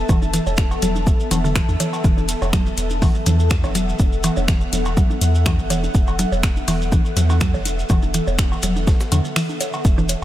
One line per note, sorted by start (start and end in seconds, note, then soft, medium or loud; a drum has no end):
0.00 9.85 B3 medium
0.00 9.85 A4 medium
0.00 9.85 E5 medium
0.00 2.69 A5 medium
0.09 0.40 E1 loud
0.09 0.13 E3 loud
0.09 kick loud
0.09 cowbell medium
0.09 maracas medium
0.09 shaker medium
0.22 low bongo soft
0.22 maracas soft
0.34 0.37 E3 medium
0.34 closed hi-hat medium
0.34 shaker medium
0.34 maracas medium
0.47 0.77 E1 medium
0.47 high bongo medium
0.47 maracas soft
0.57 finger snap medium
0.57 kick loud
0.57 snare loud
0.57 low bongo soft
0.57 maracas medium
0.57 shaker medium
0.71 cowbell medium
0.71 maracas soft
0.82 1.13 E1 medium
0.82 0.84 F#3 medium
0.82 closed hi-hat medium
0.82 low conga medium
0.82 maracas medium
0.82 shaker medium
0.96 low bongo soft
0.96 maracas soft
1.07 kick loud
1.07 shaker medium
1.07 maracas soft
1.20 maracas soft
1.31 1.62 E1 loud
1.31 1.35 E3 medium
1.31 closed hi-hat medium
1.31 cowbell medium
1.31 low bongo soft
1.31 low conga medium
1.31 shaker medium
1.31 maracas loud
1.44 1.49 D3 medium
1.44 maracas soft
1.56 1.59 E3 medium
1.56 finger snap medium
1.56 kick loud
1.56 snare loud
1.56 shaker medium
1.56 maracas medium
1.69 1.76 E2 medium
1.69 low bongo soft
1.69 maracas soft
1.80 1.82 E3 medium
1.80 closed hi-hat medium
1.80 high bongo medium
1.80 shaker medium
1.80 maracas medium
1.93 cowbell medium
1.93 maracas soft
2.04 2.35 E1 loud
2.04 2.08 E3 medium
2.04 kick loud
2.04 maracas soft
2.04 shaker medium
2.18 low bongo soft
2.18 maracas soft
2.29 closed hi-hat medium
2.29 maracas medium
2.29 shaker medium
2.42 2.72 E1 medium
2.42 cowbell medium
2.42 high bongo medium
2.42 maracas soft
2.53 2.55 F#3 medium
2.53 finger snap medium
2.53 kick loud
2.53 snare loud
2.53 low bongo soft
2.53 shaker medium
2.53 maracas medium
2.66 9.88 F#5 medium
2.66 maracas soft
2.77 3.08 E1 medium
2.77 closed hi-hat medium
2.77 maracas medium
2.77 shaker medium
2.90 low bongo soft
2.90 maracas soft
3.02 3.05 E3 loud
3.02 kick loud
3.02 open hi-hat medium
3.02 cowbell medium
3.02 maracas medium
3.15 maracas soft
3.26 3.65 E2 loud
3.26 3.30 E3 medium
3.26 closed hi-hat medium
3.26 low bongo soft
3.26 low conga medium
3.26 maracas medium
3.26 shaker medium
3.39 maracas soft
3.50 finger snap medium
3.50 kick loud
3.50 snare loud
3.50 maracas medium
3.50 shaker medium
3.64 3.94 E1 medium
3.64 snare soft
3.64 cowbell medium
3.64 high bongo medium
3.64 low bongo soft
3.64 maracas soft
3.75 3.77 F#3 medium
3.75 closed hi-hat medium
3.75 maracas loud
3.75 shaker medium
3.89 maracas soft
3.99 4.30 E1 loud
3.99 kick loud
3.99 low bongo soft
3.99 maracas medium
3.99 shaker medium
4.13 maracas soft
4.23 4.27 E3 loud
4.23 closed hi-hat medium
4.23 cowbell medium
4.23 maracas medium
4.23 shaker medium
4.37 4.67 E1 medium
4.37 high bongo medium
4.37 low bongo soft
4.37 maracas soft
4.48 4.52 E3 medium
4.48 finger snap medium
4.48 kick loud
4.48 snare loud
4.48 maracas soft
4.48 shaker medium
4.61 maracas soft
4.73 5.04 E1 medium
4.73 closed hi-hat medium
4.73 low bongo soft
4.73 low conga medium
4.73 shaker medium
4.73 maracas medium
4.85 cowbell medium
4.85 maracas soft
4.97 4.99 F#3 medium
4.97 kick loud
4.97 shaker medium
4.97 maracas medium
5.10 low bongo soft
5.10 maracas soft
5.21 5.60 E2 loud
5.21 closed hi-hat medium
5.21 low conga medium
5.21 shaker medium
5.21 maracas medium
5.35 maracas soft
5.46 5.49 E3 loud
5.46 finger snap medium
5.46 kick loud
5.46 snare loud
5.46 cowbell medium
5.46 low bongo soft
5.46 maracas medium
5.46 shaker medium
5.59 5.89 E1 medium
5.59 maracas soft
5.70 5.74 E3 medium
5.70 closed hi-hat medium
5.70 high bongo medium
5.70 shaker medium
5.70 maracas medium
5.84 low bongo soft
5.84 maracas soft
5.94 6.26 E1 loud
5.94 kick loud
5.94 maracas soft
5.94 shaker medium
6.07 cowbell medium
6.07 maracas soft
6.19 6.21 F#3 medium
6.19 closed hi-hat medium
6.19 low bongo soft
6.19 shaker medium
6.19 maracas medium
6.32 6.62 E1 medium
6.32 high bongo medium
6.32 maracas soft
6.43 finger snap medium
6.43 kick loud
6.43 snare loud
6.43 shaker medium
6.43 maracas soft
6.56 low bongo soft
6.56 maracas soft
6.68 6.99 E1 medium
6.68 6.71 E3 loud
6.68 closed hi-hat medium
6.68 open hi-hat medium
6.68 cowbell medium
6.68 maracas medium
6.82 maracas soft
6.92 6.96 E3 medium
6.92 kick loud
6.92 low bongo soft
6.92 maracas soft
6.92 shaker medium
7.05 maracas soft
7.17 7.56 E2 loud
7.17 snare loud
7.17 closed hi-hat medium
7.17 low conga medium
7.17 shaker medium
7.17 maracas medium
7.30 snare soft
7.30 cowbell medium
7.30 low bongo soft
7.30 maracas soft
7.41 7.43 F#3 medium
7.41 finger snap medium
7.41 kick loud
7.41 snare loud
7.41 maracas medium
7.41 shaker medium
7.54 7.84 E1 medium
7.54 snare soft
7.54 high bongo medium
7.54 maracas soft
7.65 closed hi-hat medium
7.65 low bongo soft
7.65 shaker medium
7.65 maracas medium
7.79 maracas soft
7.89 8.21 E1 loud
7.89 7.93 E3 loud
7.89 kick loud
7.89 cowbell medium
7.89 maracas medium
7.89 shaker medium
8.02 low bongo soft
8.02 maracas soft
8.14 8.18 E3 medium
8.14 closed hi-hat medium
8.14 maracas medium
8.14 shaker medium
8.27 8.57 E1 medium
8.27 high bongo medium
8.27 maracas soft
8.38 finger snap medium
8.38 kick loud
8.38 snare loud
8.38 low bongo soft
8.38 maracas soft
8.38 shaker medium
8.52 cowbell medium
8.52 maracas soft
8.62 8.94 E1 medium
8.62 8.65 F#3 medium
8.62 closed hi-hat medium
8.62 low conga medium
8.62 maracas medium
8.62 shaker medium
8.76 low bongo soft
8.76 maracas soft
8.87 kick loud
8.87 snare loud
8.87 shaker medium
8.87 maracas medium
9.01 snare loud
9.01 shaker medium
9.01 maracas soft
9.12 9.21 E2 loud
9.12 9.14 D3 medium
9.12 closed hi-hat medium
9.12 cowbell medium
9.12 low bongo soft
9.12 low conga medium
9.12 shaker medium
9.12 maracas medium
9.25 maracas soft
9.36 9.38 E3 medium
9.36 finger snap medium
9.36 open hi-hat medium
9.36 maracas medium
9.49 low bongo soft
9.49 maracas soft
9.61 closed hi-hat medium
9.61 high bongo medium
9.61 shaker medium
9.61 maracas medium
9.73 cowbell medium
9.73 maracas soft
9.85 10.16 E1 loud
9.85 kick loud
9.85 maracas medium
9.85 shaker medium
9.98 10.02 E3 medium
9.98 low bongo soft
9.98 maracas soft
10.09 closed hi-hat medium
10.09 high bongo soft
10.09 maracas medium
10.09 shaker medium